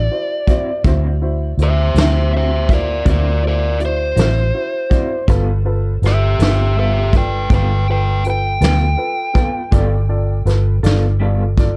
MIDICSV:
0, 0, Header, 1, 6, 480
1, 0, Start_track
1, 0, Tempo, 739827
1, 546, Time_signature, 12, 3, 24, 8
1, 7634, End_track
2, 0, Start_track
2, 0, Title_t, "Lead electric guitar"
2, 0, Program_c, 0, 29
2, 0, Note_on_c, 0, 74, 79
2, 536, Note_off_c, 0, 74, 0
2, 1055, Note_on_c, 0, 72, 73
2, 1060, Note_on_c, 0, 76, 87
2, 1276, Note_off_c, 0, 76, 0
2, 1280, Note_off_c, 0, 72, 0
2, 1297, Note_on_c, 0, 72, 66
2, 1302, Note_on_c, 0, 76, 70
2, 1506, Note_off_c, 0, 72, 0
2, 1516, Note_off_c, 0, 76, 0
2, 1536, Note_on_c, 0, 72, 68
2, 1540, Note_on_c, 0, 76, 72
2, 1744, Note_off_c, 0, 72, 0
2, 1756, Note_off_c, 0, 76, 0
2, 1771, Note_on_c, 0, 70, 67
2, 1778, Note_on_c, 0, 74, 74
2, 1982, Note_off_c, 0, 70, 0
2, 1994, Note_off_c, 0, 74, 0
2, 2010, Note_on_c, 0, 70, 70
2, 2014, Note_on_c, 0, 74, 69
2, 2221, Note_off_c, 0, 70, 0
2, 2231, Note_off_c, 0, 74, 0
2, 2254, Note_on_c, 0, 70, 68
2, 2260, Note_on_c, 0, 74, 65
2, 2464, Note_off_c, 0, 70, 0
2, 2474, Note_off_c, 0, 74, 0
2, 2501, Note_on_c, 0, 72, 89
2, 3416, Note_off_c, 0, 72, 0
2, 3933, Note_on_c, 0, 67, 71
2, 3941, Note_on_c, 0, 76, 78
2, 4155, Note_off_c, 0, 76, 0
2, 4158, Note_off_c, 0, 67, 0
2, 4174, Note_on_c, 0, 67, 68
2, 4177, Note_on_c, 0, 76, 76
2, 4383, Note_off_c, 0, 67, 0
2, 4394, Note_off_c, 0, 76, 0
2, 4405, Note_on_c, 0, 67, 64
2, 4409, Note_on_c, 0, 76, 79
2, 4618, Note_off_c, 0, 67, 0
2, 4629, Note_off_c, 0, 76, 0
2, 4649, Note_on_c, 0, 71, 67
2, 4655, Note_on_c, 0, 79, 70
2, 4860, Note_off_c, 0, 71, 0
2, 4872, Note_off_c, 0, 79, 0
2, 4893, Note_on_c, 0, 71, 71
2, 4900, Note_on_c, 0, 79, 67
2, 5103, Note_off_c, 0, 71, 0
2, 5114, Note_off_c, 0, 79, 0
2, 5131, Note_on_c, 0, 71, 67
2, 5137, Note_on_c, 0, 79, 74
2, 5341, Note_off_c, 0, 71, 0
2, 5354, Note_off_c, 0, 79, 0
2, 5384, Note_on_c, 0, 79, 94
2, 6779, Note_off_c, 0, 79, 0
2, 7634, End_track
3, 0, Start_track
3, 0, Title_t, "Upright piano"
3, 0, Program_c, 1, 0
3, 73, Note_on_c, 1, 64, 46
3, 75, Note_on_c, 1, 66, 45
3, 79, Note_on_c, 1, 72, 52
3, 250, Note_off_c, 1, 64, 0
3, 251, Note_off_c, 1, 66, 0
3, 253, Note_off_c, 1, 72, 0
3, 315, Note_on_c, 1, 64, 56
3, 323, Note_on_c, 1, 66, 51
3, 323, Note_on_c, 1, 72, 56
3, 491, Note_off_c, 1, 64, 0
3, 495, Note_off_c, 1, 66, 0
3, 495, Note_off_c, 1, 72, 0
3, 555, Note_on_c, 1, 64, 67
3, 563, Note_on_c, 1, 66, 70
3, 567, Note_on_c, 1, 72, 77
3, 730, Note_off_c, 1, 64, 0
3, 735, Note_off_c, 1, 66, 0
3, 736, Note_off_c, 1, 72, 0
3, 790, Note_on_c, 1, 64, 65
3, 794, Note_on_c, 1, 66, 56
3, 797, Note_on_c, 1, 72, 61
3, 968, Note_off_c, 1, 64, 0
3, 970, Note_off_c, 1, 66, 0
3, 971, Note_off_c, 1, 72, 0
3, 1030, Note_on_c, 1, 64, 45
3, 1034, Note_on_c, 1, 66, 43
3, 1036, Note_on_c, 1, 72, 50
3, 1207, Note_off_c, 1, 64, 0
3, 1210, Note_off_c, 1, 66, 0
3, 1210, Note_off_c, 1, 72, 0
3, 1268, Note_on_c, 1, 64, 52
3, 1275, Note_on_c, 1, 66, 45
3, 1275, Note_on_c, 1, 72, 53
3, 1446, Note_off_c, 1, 64, 0
3, 1450, Note_off_c, 1, 66, 0
3, 1450, Note_off_c, 1, 72, 0
3, 1510, Note_on_c, 1, 64, 49
3, 1513, Note_on_c, 1, 66, 43
3, 1517, Note_on_c, 1, 72, 53
3, 1687, Note_off_c, 1, 64, 0
3, 1689, Note_off_c, 1, 66, 0
3, 1691, Note_off_c, 1, 72, 0
3, 1742, Note_on_c, 1, 64, 54
3, 1748, Note_on_c, 1, 66, 48
3, 1753, Note_on_c, 1, 72, 56
3, 1923, Note_off_c, 1, 64, 0
3, 1926, Note_off_c, 1, 66, 0
3, 1928, Note_off_c, 1, 72, 0
3, 1978, Note_on_c, 1, 64, 51
3, 1980, Note_on_c, 1, 66, 46
3, 1984, Note_on_c, 1, 72, 53
3, 2161, Note_off_c, 1, 64, 0
3, 2162, Note_off_c, 1, 66, 0
3, 2164, Note_off_c, 1, 72, 0
3, 2226, Note_on_c, 1, 64, 46
3, 2228, Note_on_c, 1, 66, 46
3, 2230, Note_on_c, 1, 72, 55
3, 2405, Note_off_c, 1, 64, 0
3, 2406, Note_off_c, 1, 66, 0
3, 2407, Note_off_c, 1, 72, 0
3, 2463, Note_on_c, 1, 64, 55
3, 2466, Note_on_c, 1, 66, 48
3, 2474, Note_on_c, 1, 74, 60
3, 2643, Note_off_c, 1, 64, 0
3, 2645, Note_off_c, 1, 66, 0
3, 2649, Note_off_c, 1, 74, 0
3, 2706, Note_on_c, 1, 64, 53
3, 2709, Note_on_c, 1, 66, 41
3, 2710, Note_on_c, 1, 72, 58
3, 2885, Note_off_c, 1, 64, 0
3, 2886, Note_off_c, 1, 66, 0
3, 2887, Note_off_c, 1, 72, 0
3, 2947, Note_on_c, 1, 64, 53
3, 2949, Note_on_c, 1, 66, 45
3, 2956, Note_on_c, 1, 72, 55
3, 3125, Note_off_c, 1, 64, 0
3, 3126, Note_off_c, 1, 66, 0
3, 3129, Note_off_c, 1, 72, 0
3, 3186, Note_on_c, 1, 64, 59
3, 3189, Note_on_c, 1, 74, 64
3, 3191, Note_on_c, 1, 66, 49
3, 3365, Note_off_c, 1, 64, 0
3, 3366, Note_off_c, 1, 74, 0
3, 3367, Note_off_c, 1, 66, 0
3, 3429, Note_on_c, 1, 65, 72
3, 3436, Note_on_c, 1, 69, 72
3, 3437, Note_on_c, 1, 71, 84
3, 3606, Note_off_c, 1, 65, 0
3, 3610, Note_off_c, 1, 69, 0
3, 3610, Note_off_c, 1, 71, 0
3, 3665, Note_on_c, 1, 65, 64
3, 3671, Note_on_c, 1, 71, 69
3, 3672, Note_on_c, 1, 69, 58
3, 3844, Note_off_c, 1, 65, 0
3, 3847, Note_off_c, 1, 71, 0
3, 3848, Note_off_c, 1, 69, 0
3, 3917, Note_on_c, 1, 65, 49
3, 3918, Note_on_c, 1, 69, 48
3, 3920, Note_on_c, 1, 71, 53
3, 4090, Note_off_c, 1, 65, 0
3, 4091, Note_off_c, 1, 69, 0
3, 4092, Note_off_c, 1, 71, 0
3, 4155, Note_on_c, 1, 65, 50
3, 4160, Note_on_c, 1, 69, 46
3, 4163, Note_on_c, 1, 71, 56
3, 4329, Note_off_c, 1, 65, 0
3, 4332, Note_off_c, 1, 69, 0
3, 4333, Note_off_c, 1, 71, 0
3, 4394, Note_on_c, 1, 65, 50
3, 4402, Note_on_c, 1, 69, 45
3, 4405, Note_on_c, 1, 71, 57
3, 4569, Note_off_c, 1, 65, 0
3, 4573, Note_off_c, 1, 69, 0
3, 4574, Note_off_c, 1, 71, 0
3, 4639, Note_on_c, 1, 65, 51
3, 4640, Note_on_c, 1, 69, 49
3, 4643, Note_on_c, 1, 74, 54
3, 4811, Note_off_c, 1, 65, 0
3, 4812, Note_off_c, 1, 69, 0
3, 4813, Note_off_c, 1, 74, 0
3, 4872, Note_on_c, 1, 65, 51
3, 4875, Note_on_c, 1, 69, 46
3, 4881, Note_on_c, 1, 71, 61
3, 5048, Note_off_c, 1, 65, 0
3, 5049, Note_off_c, 1, 69, 0
3, 5052, Note_off_c, 1, 71, 0
3, 5122, Note_on_c, 1, 65, 46
3, 5122, Note_on_c, 1, 69, 45
3, 5125, Note_on_c, 1, 71, 58
3, 5293, Note_off_c, 1, 65, 0
3, 5293, Note_off_c, 1, 69, 0
3, 5294, Note_off_c, 1, 71, 0
3, 5356, Note_on_c, 1, 65, 54
3, 5361, Note_on_c, 1, 69, 52
3, 5365, Note_on_c, 1, 71, 63
3, 5530, Note_off_c, 1, 65, 0
3, 5533, Note_off_c, 1, 69, 0
3, 5534, Note_off_c, 1, 71, 0
3, 5586, Note_on_c, 1, 65, 49
3, 5588, Note_on_c, 1, 69, 49
3, 5593, Note_on_c, 1, 71, 61
3, 5765, Note_off_c, 1, 65, 0
3, 5766, Note_off_c, 1, 69, 0
3, 5768, Note_off_c, 1, 71, 0
3, 5820, Note_on_c, 1, 65, 54
3, 5825, Note_on_c, 1, 69, 50
3, 5828, Note_on_c, 1, 71, 61
3, 6002, Note_off_c, 1, 65, 0
3, 6005, Note_off_c, 1, 69, 0
3, 6006, Note_off_c, 1, 71, 0
3, 6058, Note_on_c, 1, 65, 61
3, 6058, Note_on_c, 1, 69, 50
3, 6065, Note_on_c, 1, 71, 70
3, 6241, Note_off_c, 1, 65, 0
3, 6241, Note_off_c, 1, 69, 0
3, 6245, Note_off_c, 1, 71, 0
3, 6301, Note_on_c, 1, 65, 70
3, 6306, Note_on_c, 1, 69, 66
3, 6308, Note_on_c, 1, 74, 86
3, 6483, Note_off_c, 1, 65, 0
3, 6485, Note_off_c, 1, 69, 0
3, 6486, Note_off_c, 1, 74, 0
3, 6548, Note_on_c, 1, 65, 61
3, 6548, Note_on_c, 1, 69, 56
3, 6550, Note_on_c, 1, 74, 72
3, 6726, Note_off_c, 1, 65, 0
3, 6726, Note_off_c, 1, 69, 0
3, 6728, Note_off_c, 1, 74, 0
3, 6785, Note_on_c, 1, 65, 59
3, 6787, Note_on_c, 1, 69, 52
3, 6793, Note_on_c, 1, 71, 71
3, 6965, Note_off_c, 1, 65, 0
3, 6966, Note_off_c, 1, 69, 0
3, 6969, Note_off_c, 1, 71, 0
3, 7027, Note_on_c, 1, 65, 63
3, 7029, Note_on_c, 1, 69, 52
3, 7036, Note_on_c, 1, 74, 69
3, 7206, Note_off_c, 1, 65, 0
3, 7207, Note_off_c, 1, 69, 0
3, 7211, Note_off_c, 1, 74, 0
3, 7274, Note_on_c, 1, 65, 62
3, 7276, Note_on_c, 1, 69, 53
3, 7279, Note_on_c, 1, 74, 62
3, 7450, Note_off_c, 1, 65, 0
3, 7451, Note_off_c, 1, 69, 0
3, 7453, Note_off_c, 1, 74, 0
3, 7518, Note_on_c, 1, 65, 67
3, 7523, Note_on_c, 1, 74, 75
3, 7524, Note_on_c, 1, 69, 55
3, 7634, Note_off_c, 1, 65, 0
3, 7634, Note_off_c, 1, 69, 0
3, 7634, Note_off_c, 1, 74, 0
3, 7634, End_track
4, 0, Start_track
4, 0, Title_t, "Clean electric guitar"
4, 0, Program_c, 2, 27
4, 305, Note_on_c, 2, 66, 52
4, 315, Note_on_c, 2, 64, 51
4, 321, Note_on_c, 2, 60, 43
4, 450, Note_off_c, 2, 66, 0
4, 455, Note_off_c, 2, 64, 0
4, 458, Note_off_c, 2, 60, 0
4, 544, Note_on_c, 2, 50, 78
4, 550, Note_on_c, 2, 60, 75
4, 554, Note_on_c, 2, 64, 78
4, 556, Note_on_c, 2, 66, 76
4, 689, Note_off_c, 2, 50, 0
4, 692, Note_off_c, 2, 60, 0
4, 694, Note_off_c, 2, 64, 0
4, 695, Note_off_c, 2, 66, 0
4, 1259, Note_on_c, 2, 66, 46
4, 1272, Note_on_c, 2, 64, 41
4, 1279, Note_on_c, 2, 60, 38
4, 1406, Note_off_c, 2, 66, 0
4, 1412, Note_off_c, 2, 64, 0
4, 1416, Note_off_c, 2, 60, 0
4, 1499, Note_on_c, 2, 50, 57
4, 1507, Note_on_c, 2, 60, 64
4, 1514, Note_on_c, 2, 64, 58
4, 1517, Note_on_c, 2, 66, 53
4, 1646, Note_off_c, 2, 50, 0
4, 1650, Note_off_c, 2, 60, 0
4, 1653, Note_off_c, 2, 64, 0
4, 1655, Note_off_c, 2, 66, 0
4, 1980, Note_on_c, 2, 50, 79
4, 1987, Note_on_c, 2, 60, 68
4, 1987, Note_on_c, 2, 64, 72
4, 1992, Note_on_c, 2, 66, 79
4, 2126, Note_off_c, 2, 50, 0
4, 2130, Note_off_c, 2, 60, 0
4, 2130, Note_off_c, 2, 64, 0
4, 2132, Note_off_c, 2, 66, 0
4, 2696, Note_on_c, 2, 66, 49
4, 2708, Note_on_c, 2, 64, 36
4, 2714, Note_on_c, 2, 60, 36
4, 2844, Note_off_c, 2, 66, 0
4, 2850, Note_off_c, 2, 64, 0
4, 2853, Note_off_c, 2, 60, 0
4, 3179, Note_on_c, 2, 66, 53
4, 3186, Note_on_c, 2, 64, 47
4, 3195, Note_on_c, 2, 60, 49
4, 3325, Note_off_c, 2, 66, 0
4, 3329, Note_off_c, 2, 64, 0
4, 3333, Note_off_c, 2, 60, 0
4, 3426, Note_on_c, 2, 55, 64
4, 3431, Note_on_c, 2, 59, 78
4, 3434, Note_on_c, 2, 65, 85
4, 3436, Note_on_c, 2, 69, 77
4, 3568, Note_off_c, 2, 55, 0
4, 3571, Note_off_c, 2, 59, 0
4, 3573, Note_off_c, 2, 65, 0
4, 3574, Note_off_c, 2, 69, 0
4, 4146, Note_on_c, 2, 69, 46
4, 4159, Note_on_c, 2, 65, 41
4, 4163, Note_on_c, 2, 59, 36
4, 4289, Note_off_c, 2, 69, 0
4, 4295, Note_off_c, 2, 65, 0
4, 4297, Note_off_c, 2, 59, 0
4, 4381, Note_on_c, 2, 55, 62
4, 4389, Note_on_c, 2, 59, 56
4, 4394, Note_on_c, 2, 65, 59
4, 4400, Note_on_c, 2, 69, 62
4, 4526, Note_off_c, 2, 55, 0
4, 4530, Note_off_c, 2, 59, 0
4, 4533, Note_off_c, 2, 65, 0
4, 4536, Note_off_c, 2, 69, 0
4, 4863, Note_on_c, 2, 55, 78
4, 4867, Note_on_c, 2, 59, 64
4, 4870, Note_on_c, 2, 65, 76
4, 4872, Note_on_c, 2, 69, 79
4, 5007, Note_off_c, 2, 55, 0
4, 5009, Note_off_c, 2, 59, 0
4, 5011, Note_off_c, 2, 65, 0
4, 5012, Note_off_c, 2, 69, 0
4, 5589, Note_on_c, 2, 69, 52
4, 5599, Note_on_c, 2, 65, 42
4, 5606, Note_on_c, 2, 59, 42
4, 5730, Note_off_c, 2, 69, 0
4, 5736, Note_off_c, 2, 65, 0
4, 5739, Note_off_c, 2, 59, 0
4, 6067, Note_on_c, 2, 69, 62
4, 6078, Note_on_c, 2, 65, 52
4, 6087, Note_on_c, 2, 59, 47
4, 6210, Note_off_c, 2, 69, 0
4, 6215, Note_off_c, 2, 65, 0
4, 6220, Note_off_c, 2, 59, 0
4, 6305, Note_on_c, 2, 55, 80
4, 6311, Note_on_c, 2, 59, 76
4, 6317, Note_on_c, 2, 65, 77
4, 6318, Note_on_c, 2, 69, 93
4, 6449, Note_off_c, 2, 55, 0
4, 6452, Note_off_c, 2, 59, 0
4, 6455, Note_off_c, 2, 65, 0
4, 6455, Note_off_c, 2, 69, 0
4, 7028, Note_on_c, 2, 69, 56
4, 7040, Note_on_c, 2, 65, 48
4, 7047, Note_on_c, 2, 59, 46
4, 7171, Note_off_c, 2, 69, 0
4, 7177, Note_off_c, 2, 65, 0
4, 7180, Note_off_c, 2, 59, 0
4, 7265, Note_on_c, 2, 55, 73
4, 7271, Note_on_c, 2, 59, 60
4, 7277, Note_on_c, 2, 65, 68
4, 7281, Note_on_c, 2, 69, 68
4, 7409, Note_off_c, 2, 55, 0
4, 7412, Note_off_c, 2, 59, 0
4, 7415, Note_off_c, 2, 65, 0
4, 7418, Note_off_c, 2, 69, 0
4, 7634, End_track
5, 0, Start_track
5, 0, Title_t, "Fingered electric bass"
5, 0, Program_c, 3, 33
5, 548, Note_on_c, 3, 38, 72
5, 1001, Note_off_c, 3, 38, 0
5, 1022, Note_on_c, 3, 38, 70
5, 1244, Note_off_c, 3, 38, 0
5, 1261, Note_on_c, 3, 38, 84
5, 1956, Note_off_c, 3, 38, 0
5, 1985, Note_on_c, 3, 38, 85
5, 2678, Note_off_c, 3, 38, 0
5, 2702, Note_on_c, 3, 33, 85
5, 2923, Note_off_c, 3, 33, 0
5, 3425, Note_on_c, 3, 31, 77
5, 3878, Note_off_c, 3, 31, 0
5, 3905, Note_on_c, 3, 31, 66
5, 4125, Note_off_c, 3, 31, 0
5, 4146, Note_on_c, 3, 31, 94
5, 4839, Note_off_c, 3, 31, 0
5, 4867, Note_on_c, 3, 31, 91
5, 5560, Note_off_c, 3, 31, 0
5, 5585, Note_on_c, 3, 38, 90
5, 5805, Note_off_c, 3, 38, 0
5, 6308, Note_on_c, 3, 31, 82
5, 6761, Note_off_c, 3, 31, 0
5, 6782, Note_on_c, 3, 31, 83
5, 7004, Note_off_c, 3, 31, 0
5, 7026, Note_on_c, 3, 31, 94
5, 7634, Note_off_c, 3, 31, 0
5, 7634, End_track
6, 0, Start_track
6, 0, Title_t, "Drums"
6, 308, Note_on_c, 9, 36, 64
6, 308, Note_on_c, 9, 42, 51
6, 373, Note_off_c, 9, 36, 0
6, 373, Note_off_c, 9, 42, 0
6, 548, Note_on_c, 9, 36, 89
6, 548, Note_on_c, 9, 42, 61
6, 613, Note_off_c, 9, 36, 0
6, 613, Note_off_c, 9, 42, 0
6, 1029, Note_on_c, 9, 42, 48
6, 1094, Note_off_c, 9, 42, 0
6, 1268, Note_on_c, 9, 42, 68
6, 1284, Note_on_c, 9, 38, 84
6, 1333, Note_off_c, 9, 42, 0
6, 1349, Note_off_c, 9, 38, 0
6, 1745, Note_on_c, 9, 36, 70
6, 1748, Note_on_c, 9, 42, 56
6, 1810, Note_off_c, 9, 36, 0
6, 1813, Note_off_c, 9, 42, 0
6, 1982, Note_on_c, 9, 42, 78
6, 1985, Note_on_c, 9, 36, 97
6, 2047, Note_off_c, 9, 42, 0
6, 2050, Note_off_c, 9, 36, 0
6, 2464, Note_on_c, 9, 42, 62
6, 2529, Note_off_c, 9, 42, 0
6, 2704, Note_on_c, 9, 42, 85
6, 2721, Note_on_c, 9, 38, 104
6, 2769, Note_off_c, 9, 42, 0
6, 2785, Note_off_c, 9, 38, 0
6, 3185, Note_on_c, 9, 42, 54
6, 3186, Note_on_c, 9, 36, 63
6, 3250, Note_off_c, 9, 36, 0
6, 3250, Note_off_c, 9, 42, 0
6, 3426, Note_on_c, 9, 36, 88
6, 3426, Note_on_c, 9, 42, 68
6, 3491, Note_off_c, 9, 36, 0
6, 3491, Note_off_c, 9, 42, 0
6, 3911, Note_on_c, 9, 42, 51
6, 3928, Note_on_c, 9, 38, 25
6, 3976, Note_off_c, 9, 42, 0
6, 3993, Note_off_c, 9, 38, 0
6, 4149, Note_on_c, 9, 42, 70
6, 4165, Note_on_c, 9, 38, 84
6, 4213, Note_off_c, 9, 42, 0
6, 4230, Note_off_c, 9, 38, 0
6, 4624, Note_on_c, 9, 42, 51
6, 4626, Note_on_c, 9, 36, 68
6, 4689, Note_off_c, 9, 42, 0
6, 4691, Note_off_c, 9, 36, 0
6, 4865, Note_on_c, 9, 42, 75
6, 4867, Note_on_c, 9, 36, 104
6, 4929, Note_off_c, 9, 42, 0
6, 4932, Note_off_c, 9, 36, 0
6, 5347, Note_on_c, 9, 42, 55
6, 5412, Note_off_c, 9, 42, 0
6, 5588, Note_on_c, 9, 42, 78
6, 5605, Note_on_c, 9, 38, 100
6, 5653, Note_off_c, 9, 42, 0
6, 5670, Note_off_c, 9, 38, 0
6, 6067, Note_on_c, 9, 36, 72
6, 6069, Note_on_c, 9, 42, 51
6, 6132, Note_off_c, 9, 36, 0
6, 6133, Note_off_c, 9, 42, 0
6, 6308, Note_on_c, 9, 36, 87
6, 6309, Note_on_c, 9, 42, 76
6, 6373, Note_off_c, 9, 36, 0
6, 6373, Note_off_c, 9, 42, 0
6, 6790, Note_on_c, 9, 42, 56
6, 6806, Note_on_c, 9, 38, 27
6, 6854, Note_off_c, 9, 42, 0
6, 6871, Note_off_c, 9, 38, 0
6, 7030, Note_on_c, 9, 42, 68
6, 7047, Note_on_c, 9, 38, 91
6, 7095, Note_off_c, 9, 42, 0
6, 7112, Note_off_c, 9, 38, 0
6, 7510, Note_on_c, 9, 36, 75
6, 7511, Note_on_c, 9, 42, 61
6, 7575, Note_off_c, 9, 36, 0
6, 7576, Note_off_c, 9, 42, 0
6, 7634, End_track
0, 0, End_of_file